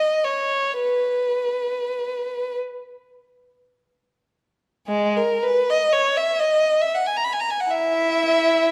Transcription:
Already playing: D#5
0.24 C#5
0.83 B4
4.88 G#3
5.17 A#4
5.43 B4
5.70 D#5
5.93 C#5
6.17 E5
6.39 D#5
6.82 E5
6.95 F#5
7.07 G#5
7.17 A#5
7.24 B5
7.33 G#5
7.40 A#5
7.50 G#5
7.60 F#5
7.71 E4 E5

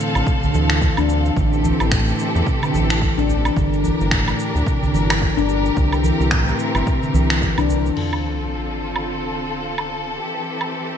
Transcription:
Already playing: D3 C4 A4 F5
0.00 shaker
0.15 A1, low woodblock, shaker
0.27 C3, kick, shaker
0.43 D3, udu, shaker
0.54 D2 E3, shaker
0.70 finger snap, shaker
0.82 kick, shaker
0.97 D2 D4, low woodblock, shaker
1.09 shaker
1.25 shaker
1.36 A1 D3 E3 C4 G4 A4, kick, shaker
1.53 shaker
1.64 E3, udu, shaker
1.80 A1, low woodblock, shaker
1.92 A2, finger snap, kick, shaker
2.08 shaker
2.19 shaker
2.35 E2, shaker
2.46 C3, kick, shaker
2.62 D3, low woodblock, shaker
2.73 A1 E3, udu, shaker
2.90 finger snap, shaker
3.01 kick, shaker
3.18 A1 D4, shaker
3.29 udu, shaker
3.45 low woodblock, shaker
3.56 G1 D3 D4 G4 A#4, kick, shaker
3.73 shaker
3.84 E3, udu, shaker
4.01 G1, shaker
4.11 A2, finger snap, kick, shaker
4.28 low woodblock, shaker
4.39 shaker
4.55 D2, shaker
4.67 C3, kick, shaker
4.83 D3, udu, shaker
4.94 G1 E3, shaker
5.10 finger snap, low woodblock, shaker
5.22 kick, shaker
5.37 G1 D4, shaker
5.49 shaker
5.65 shaker
5.76 C2 D3 E3 C4, kick, shaker
5.92 low woodblock, shaker
6.04 E3, udu, shaker
6.20 C2, shaker
6.31 A2, finger snap, kick, shaker
6.48 shaker
6.59 shaker
6.75 G1, low woodblock, shaker
6.87 C3, kick, shaker
7.03 D3, shaker
7.14 C2 E3, udu, shaker
7.30 finger snap, shaker
7.42 kick, shaker
7.58 C2 D4, low woodblock, shaker
7.70 udu, shaker
7.86 shaker
7.97 D3 C4 F4 A4, crash, sub drop
8.13 low woodblock
8.96 low woodblock
9.78 low woodblock
10.17 E3 C4 G4
10.61 low woodblock

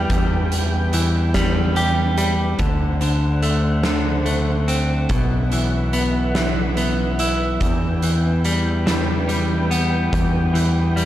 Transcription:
Already playing: E3 G3 E4 G4 B4 G5
0.10 E2, kick, closed hi-hat
0.52 closed hi-hat
0.93 E3, closed hi-hat
1.34 G3, kick, snare, closed hi-hat
1.76 G4, closed hi-hat
2.17 G3, closed hi-hat
2.59 D2 D3 D4 C5 F#5, kick, closed hi-hat
3.01 D3, closed hi-hat
3.42 A3, closed hi-hat
3.83 D3, snare, closed hi-hat
4.26 A3, closed hi-hat
4.68 C4, closed hi-hat
5.09 B1 B2 B3 B4 E5 F#5, kick, closed hi-hat
5.52 E3, closed hi-hat
5.93 B3, closed hi-hat
6.35 E3, snare, closed hi-hat
6.77 B3, closed hi-hat
7.19 E4, closed hi-hat
7.60 E2 E3 E4 B4 G5, kick, closed hi-hat
8.02 E3, closed hi-hat
8.44 G3, closed hi-hat
8.86 E3, snare, closed hi-hat
9.28 G3, closed hi-hat
9.71 B3, closed hi-hat
10.13 E2, kick, closed hi-hat
10.54 E3, closed hi-hat
10.96 G3, closed hi-hat

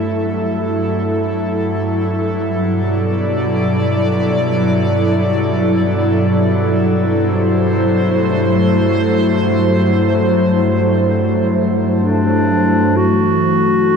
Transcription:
Already playing: G2 F#3 A3 E4 A4 E5
2.64 B2
2.70 D5
7.15 C5
8.08 A3
12.02 D4
12.97 E3 F#4
13.73 D4

